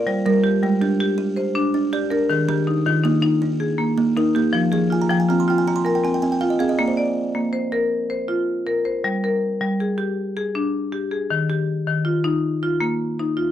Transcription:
<<
  \new Staff \with { instrumentName = "Kalimba" } { \time 12/8 \key bes \mixolydian \tempo 4. = 106 << { <c'' f''>4 r8 aes4. r8 g'4. d''4 | aes'4 r8 f'4. r2 bes'4 | f'4 aes''16 bes''16 g''16 aes''16 bes''16 c'''16 g''16 aes''16 bes''16 c'''16 aes''16 g''16 aes''16 g''16 aes''16 g''16 f''16 ees''16 f''16 ees''16 | d''16 c''8 r1 r4 r16 |
r1. | r1. | } \\ { f'8 g4 r8 d'4 g'4 r8 d'4 d'8~ | d'8 ees4 r8 bes4 ees'4 r8 bes4 bes8~ | bes8 f4 r8 c'4 f'4 r8 c'4 c'8~ | c'8 r1 r4. |
r1. | r1. | } >> }
  \new Staff \with { instrumentName = "Marimba" } { \time 12/8 \key bes \mixolydian << { d''8 bes'8 g'4 g'4. c''4. r8 bes'8~ | bes'8 g'8 ees'4 ees'4. aes'4. r8 g'8~ | g'8 aes'8 f'4 f'4. bes'4. r8 aes'8~ | aes'8 d''4. c''4. c''4. r8 c''8~ |
c''8 bes'4. aes'4. aes'4. r8 aes'8~ | aes'8 g'4. f'4. f'4. r8 f'8 | } \\ { g4 r8 g4 g'4 r8 d'4 g'4 | ees4 r8 ees4 ees'4 r8 bes4 ees'4 | f4 r8 f4 f'4 r8 c'4 f'4 | bes4 r8 bes4 bes'4 r8 f'4 bes'4 |
g4 r8 g4 g'4 r8 d'4 g'4 | ees4 r8 ees4 ees'4 r8 bes4 ees'4 | } >> }
>>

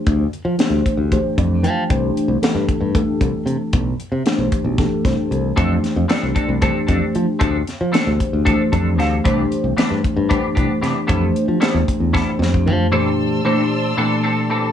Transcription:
<<
  \new Staff \with { instrumentName = "String section" } { \time 7/8 \key f \lydian \tempo 4 = 114 r2. r8 | r2. r8 | r2. r8 | r2. r8 |
r2. r8 | r2. r8 | r2. r8 | \key bes \lydian <d'' a'' c''' e'''>2.~ <d'' a'' c''' e'''>8 | }
  \new Staff \with { instrumentName = "Clean electric guitar" } { \time 7/8 \key f \lydian r2. r8 | r2. r8 | r2. r8 | <f c' d' a'>8 r8 <f c' d' a'>8 <c' d' a'>8 <f c' d' a'>8 <c' d' a'>8 r8 |
<f c' d' a'>8 r8 <f c' d' a'>8 r8 <f c' d' a'>8 <c' d' a'>8 <f c' d' a'>8 | <e b d' g'>8 r8 <e b d' g'>8 r8 <e b d' g'>8 <b d' g'>8 <e b d' g'>8 | <g b e' a'>8 r8 <g b e' a'>8 r8 <g b e' a'>8 r4 | \key bes \lydian <e c' d' a'>8 r8 <e c' d' a'>8 r8 <e c' d' a'>8 <c' d' a'>8 <e c' d' a'>8 | }
  \new Staff \with { instrumentName = "Tine electric piano" } { \time 7/8 \key f \lydian << { r2 r8 d''8 g''8 | r2. r8 | r2 r8 c''4 | r2. r8 |
r2 r8 d''8 f''8 | r2. r8 | r2. r8 | \key bes \lydian r2. r8 | } \\ { <e a d' g' c''>8 r8 <e a d' g' c''>4 <e a d' g' c''>4. | <e a d' g' c''>4 <e a d' g' a'>4 <e a d' g' a'>4.~ | <e a d' g' a'>8 r8 <e a d' g' c''>4 <e a d' g' a'>4. | <e a d' g' c''>4 <e a d' g' d''>4 <e a d' g' c''>4.~ |
<e a d' g' c''>8 r8 <e a d' g' c''>4 <e a d' g' c''>4. | <e a d' g' c''>4 <e a d' g' c''>4 <e a d' g' c''>4. | <e a d' g' c''>4 <e a d' g' c''>4 <e a d' g' c''>4. | <bes, e a d' g' c''>4 <bes, e a d' g' c''>4 <bes, e a d' g' a'>4. | } >> }
  \new Staff \with { instrumentName = "Fingered electric bass" } { \clef bass \time 7/8 \key f \lydian d,8 r16 f16 r16 d,16 r16 d,8 r16 f,8 f8 | c,8 r16 c,16 r16 g,16 r16 g,8 r16 c,16 r16 c16 r16 | b,,8 r16 c16 r16 b,,16 r16 b,,8 r16 c,16 r16 c,8 | f,8 r16 f,16 r16 c,16 r16 c,8 r16 f,16 r16 f16 r16 |
d,8 r16 f16 r16 d,16 r16 d,8 r16 f,8 d,8 | c,8 r16 c,16 r16 g,16 r16 g,8 r16 c,16 r16 c16 r16 | f,8 r16 f16 r16 e,16 r16 e,8 r16 f,8 f8 | \key bes \lydian r2. r8 | }
  \new DrumStaff \with { instrumentName = "Drums" } \drummode { \time 7/8 <hh bd>8 hh8 <hh sn>8 <hh bd>8 <hh bd>8 <hh bd>8 hh8 | <hh bd>8 hh8 <hh sn>8 <hh bd>8 <hh bd>8 <hh bd>8 hh8 | <hh bd>8 hh8 <hh sn>8 <hh bd>8 <hh bd sn>8 <hh bd sn>8 hh8 | <hh bd>8 <hh sn>8 <hh sn>8 <hh bd>8 <hh bd>8 <hh bd>8 hh8 |
<hh bd>8 <hh sn>8 <hh sn>8 <hh bd>8 <hh bd>8 <hh bd>8 <hh sn>8 | <hh bd>8 hh8 <hh sn>8 <hh bd>8 <hh bd>8 <hh bd>8 <hh sn>8 | <hh bd>8 hh8 <hh sn>8 <hh bd>8 <bd sn>8 sn16 bd16 tomfh8 | r4 r4 r4. | }
>>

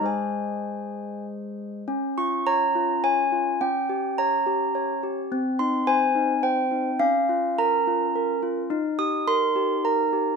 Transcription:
\new Staff \with { instrumentName = "Handbells" } { \time 3/4 \key aes \major \tempo 4 = 105 << { aes''2 r4 | r8 des'''8 bes''4 aes''4 | g''4 bes''4. r8 | r8 c'''8 aes''4 g''4 |
f''4 bes''4. r8 | r8 ees'''8 c'''4 bes''4 | } \\ { <aes aes' c''>2. | des'8 f'8 des''8 f'8 des''8 f'8 | des'8 g'8 des''8 g'8 des''8 g'8 | c'8 ees'8 c''8 ees'8 c''8 ees'8 |
des'8 f'8 bes'8 f'8 bes'8 f'8 | ees'8 g'8 bes'8 g'8 bes'8 g'8 | } >> }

